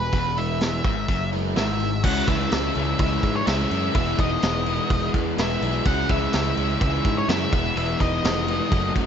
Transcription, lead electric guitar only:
Already playing: B4
0.38 E5
1.57 E5
2.04 F#5
2.27 E5
3.00 E5
3.36 C#5
3.47 E5
3.96 E5
4.20 D#5
5.40 E5
5.86 F#5
6.10 E5
6.82 E5
7.18 C#5
7.29 E5
7.77 E5
8.01 D#5

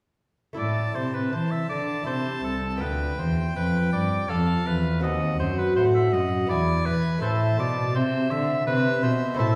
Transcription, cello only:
0.58 A2
0.96 C3
1.33 E3
1.70 D3
2.07 C3
2.44 C2
2.81 D2
3.18 E2
3.56 F2
3.93 G2
4.30 F2
4.67 E2
5.03 D#2
5.40 F#2
5.77 A2
6.13 F#2
6.50 E2
6.86 E3
7.23 A2
7.59 B2
7.95 C3
8.31 D3
8.67 C3
9.03 B2
9.40 A2

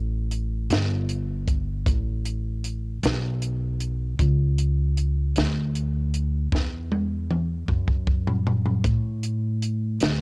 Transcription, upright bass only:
Already playing: A1
0.70 G1
1.87 A1
3.03 B1
4.19 C#2
5.37 D2
6.53 E2
7.69 F#2
8.85 A2
10.01 D2

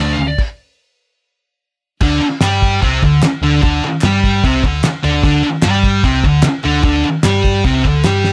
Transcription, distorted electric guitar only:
0.00 D3 A3 D4
2.01 D3 D4
2.22 muted distorted electric guitar stroke
2.41 G3 G4
2.81 C3 C4
3.03 D3
3.23 muted distorted electric guitar stroke
3.43 D3 D4
3.62 D3 D4
3.84 muted distorted electric guitar stroke
4.04 G3 G4
4.44 C3 C4
4.64 D3
4.84 muted distorted electric guitar stroke
5.03 D3 D4
5.24 D3 D4
5.44 muted distorted electric guitar stroke
5.63 G3 G4
6.04 C3 C4
6.25 D3
6.45 muted distorted electric guitar stroke
6.64 D3 D4
6.84 D3 D4
7.05 muted distorted electric guitar stroke
7.24 G3 G4
7.64 C3 C4
7.85 D3
8.05 G3 G4

